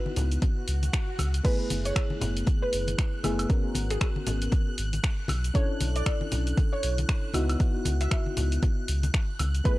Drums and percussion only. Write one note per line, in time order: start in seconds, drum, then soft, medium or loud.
0.06 high conga medium
0.16 open hi-hat loud
0.16 low conga medium
0.16 shaker medium
0.32 closed hi-hat medium
0.32 shaker soft
0.42 kick loud
0.42 closed hi-hat medium
0.42 high conga medium
0.42 shaker soft
0.68 open hi-hat loud
0.68 shaker medium
0.83 closed hi-hat medium
0.83 high conga medium
0.83 shaker soft
0.93 finger snap loud
0.93 kick loud
0.93 closed hi-hat soft
0.93 shaker soft
1.19 open hi-hat loud
1.19 high conga medium
1.19 high woodblock medium
1.19 shaker medium
1.34 closed hi-hat medium
1.34 shaker soft
1.45 kick loud
1.45 closed hi-hat medium
1.45 crash medium
1.45 shaker soft
1.70 open hi-hat loud
1.70 high conga medium
1.70 shaker medium
1.85 closed hi-hat medium
1.85 shaker soft
1.96 finger snap loud
1.96 kick loud
1.96 closed hi-hat medium
1.96 high woodblock medium
1.96 shaker soft
2.10 high conga medium
2.21 open hi-hat loud
2.21 low conga medium
2.21 shaker medium
2.37 closed hi-hat medium
2.37 shaker soft
2.47 kick loud
2.47 closed hi-hat medium
2.47 high conga medium
2.47 shaker soft
2.73 open hi-hat loud
2.73 shaker medium
2.88 closed hi-hat medium
2.88 high conga medium
2.88 shaker soft
2.98 finger snap loud
2.98 kick loud
2.98 closed hi-hat soft
2.98 shaker soft
3.24 open hi-hat loud
3.24 high conga loud
3.24 high woodblock medium
3.24 shaker medium
3.39 closed hi-hat medium
3.39 high woodblock medium
3.39 shaker soft
3.50 kick loud
3.50 closed hi-hat medium
3.50 shaker soft
3.75 open hi-hat loud
3.75 high conga medium
3.75 shaker medium
3.90 finger snap soft
3.90 closed hi-hat medium
3.90 shaker soft
4.01 finger snap loud
4.01 kick loud
4.01 closed hi-hat medium
4.01 high woodblock medium
4.01 shaker soft
4.16 high conga medium
4.27 open hi-hat loud
4.27 low conga medium
4.27 shaker medium
4.42 closed hi-hat medium
4.42 shaker soft
4.52 kick loud
4.52 closed hi-hat medium
4.52 high conga medium
4.52 shaker soft
4.78 open hi-hat loud
4.78 shaker medium
4.93 closed hi-hat medium
4.93 high conga medium
4.93 shaker soft
5.04 finger snap loud
5.04 kick loud
5.04 closed hi-hat soft
5.04 shaker soft
5.28 open hi-hat loud
5.28 high conga loud
5.28 high woodblock medium
5.28 shaker medium
5.44 closed hi-hat medium
5.44 shaker soft
5.55 kick loud
5.55 closed hi-hat medium
5.55 shaker soft
5.81 open hi-hat loud
5.81 high conga medium
5.81 shaker medium
5.96 closed hi-hat medium
5.96 shaker soft
6.06 finger snap loud
6.06 kick loud
6.06 closed hi-hat medium
6.06 high woodblock medium
6.06 shaker soft
6.21 high conga medium
6.32 open hi-hat loud
6.32 low conga medium
6.32 shaker medium
6.47 closed hi-hat medium
6.47 shaker soft
6.57 kick loud
6.57 closed hi-hat medium
6.57 high conga loud
6.57 shaker soft
6.83 open hi-hat loud
6.83 shaker medium
6.98 closed hi-hat medium
6.98 high conga medium
6.98 shaker soft
7.09 finger snap loud
7.09 kick loud
7.09 closed hi-hat soft
7.09 shaker soft
7.34 open hi-hat loud
7.34 high conga medium
7.34 high woodblock medium
7.34 shaker medium
7.50 closed hi-hat medium
7.50 high woodblock medium
7.50 shaker soft
7.60 kick loud
7.60 closed hi-hat medium
7.60 shaker soft
7.85 open hi-hat loud
7.85 high conga medium
7.85 shaker medium
8.01 finger snap soft
8.01 closed hi-hat soft
8.01 shaker soft
8.11 finger snap loud
8.11 kick loud
8.11 closed hi-hat medium
8.11 high woodblock medium
8.11 shaker soft
8.26 high conga medium
8.37 open hi-hat loud
8.37 low conga medium
8.37 shaker medium
8.52 closed hi-hat medium
8.52 shaker soft
8.63 kick loud
8.63 closed hi-hat medium
8.63 high conga loud
8.63 shaker soft
8.88 open hi-hat loud
8.88 shaker medium
9.03 closed hi-hat soft
9.03 high conga medium
9.03 shaker soft
9.14 finger snap loud
9.14 kick loud
9.14 closed hi-hat soft
9.14 shaker soft
9.39 open hi-hat loud
9.39 high conga loud
9.39 high woodblock medium
9.39 shaker medium
9.55 closed hi-hat medium
9.55 shaker soft
9.65 kick loud
9.65 closed hi-hat medium
9.65 shaker soft